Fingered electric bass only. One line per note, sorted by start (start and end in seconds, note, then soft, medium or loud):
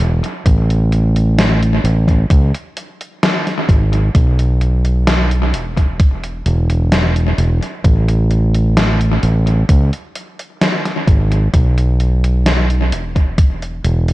0.00 0.20 E1 medium
0.46 1.79 A1 medium
1.84 2.24 A1 medium
2.30 2.51 C#2 medium
3.69 4.08 G#1 medium
4.15 5.54 B1 medium
5.54 6.41 E1 medium
6.46 7.33 E1 medium
7.38 7.58 E1 medium
7.84 9.17 A1 medium
9.23 9.62 A1 medium
9.69 9.89 C#2 medium
11.08 11.47 G#1 medium
11.54 12.92 B1 loud
12.92 13.79 E1 medium
13.84 14.13 E1 medium